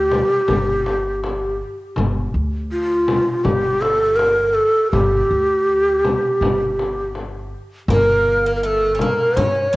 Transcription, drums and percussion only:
0.11 frame drum
0.48 frame drum
0.86 frame drum
1.24 frame drum
1.96 frame drum
3.08 frame drum
3.45 frame drum
3.82 frame drum
4.19 frame drum
4.93 frame drum
6.04 frame drum
6.42 frame drum
6.79 frame drum
7.15 frame drum
7.89 frame drum
8.99 frame drum
9.36 frame drum

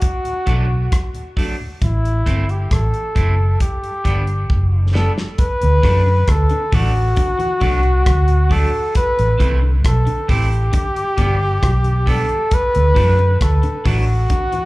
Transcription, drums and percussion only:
0.02 kick, closed hi-hat
0.25 closed hi-hat
0.47 kick, closed hi-hat
0.92 kick, cross-stick, closed hi-hat
1.15 closed hi-hat
1.37 kick, open hi-hat
1.82 kick, closed hi-hat
2.05 closed hi-hat
2.26 kick, closed hi-hat
2.49 closed hi-hat
2.71 kick, cross-stick, closed hi-hat
2.94 closed hi-hat
3.16 kick, closed hi-hat
3.60 kick, closed hi-hat
3.84 closed hi-hat
4.05 kick, closed hi-hat
4.27 closed hi-hat
4.50 kick
4.95 snare
5.18 snare
5.38 kick, closed hi-hat
5.62 closed hi-hat
5.83 kick, cross-stick, open hi-hat
6.28 kick, cross-stick, closed hi-hat
6.49 closed hi-hat
6.72 kick, open hi-hat
7.16 kick, closed hi-hat
7.40 closed hi-hat
7.61 kick, open hi-hat
7.83 closed hi-hat
8.06 kick, cross-stick, closed hi-hat
8.28 closed hi-hat
8.51 kick, open hi-hat
8.95 kick, closed hi-hat
9.19 closed hi-hat
9.40 kick, closed hi-hat
9.85 kick, cross-stick, closed hi-hat
10.07 closed hi-hat
10.29 kick, open hi-hat
10.53 closed hi-hat
10.73 kick, closed hi-hat
10.96 closed hi-hat
11.18 kick, closed hi-hat
11.63 kick, cross-stick, closed hi-hat
11.84 closed hi-hat
12.07 kick, open hi-hat
12.29 closed hi-hat
12.51 kick, closed hi-hat
12.75 closed hi-hat
12.96 kick, open hi-hat
13.19 closed hi-hat
13.41 kick, cross-stick, closed hi-hat
13.63 closed hi-hat
13.86 kick, open hi-hat
14.30 kick, closed hi-hat
14.52 closed hi-hat

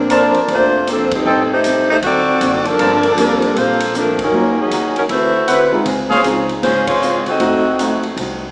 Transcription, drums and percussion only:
0.10 hi-hat pedal, ride
0.34 ride
0.48 kick, ride
0.87 hi-hat pedal, ride
1.11 kick, ride
1.64 hi-hat pedal, ride
2.02 kick, ride
2.41 hi-hat pedal, ride
2.65 ride
2.79 kick, ride
3.03 ride
3.18 hi-hat pedal, ride
3.42 ride
3.56 kick, ride
3.80 ride
3.94 hi-hat pedal
4.19 kick, ride
4.71 hi-hat pedal, ride
4.96 ride
5.09 kick, ride
5.48 hi-hat pedal, ride
5.85 kick, ride
6.10 snare
6.24 hi-hat pedal, ride
6.49 ride
6.63 kick, snare, ride
6.87 kick, ride
7.02 hi-hat pedal
7.26 ride
7.40 kick, ride
7.79 hi-hat pedal, ride
8.03 ride
8.17 kick, ride

